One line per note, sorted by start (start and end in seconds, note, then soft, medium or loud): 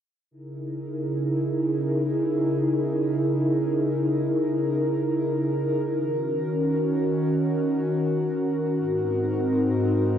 0.31 5.92 C#3 medium
0.31 5.92 D#4 medium
0.31 5.92 E4 medium
0.31 5.92 G#4 medium
0.31 8.74 A#4 medium
5.96 8.75 D#3 medium
5.96 8.75 C#4 medium
5.96 10.18 F#4 medium
8.78 10.18 G#2 medium
8.78 10.18 C4 medium
8.78 10.18 D#4 medium
8.78 10.18 A#4 medium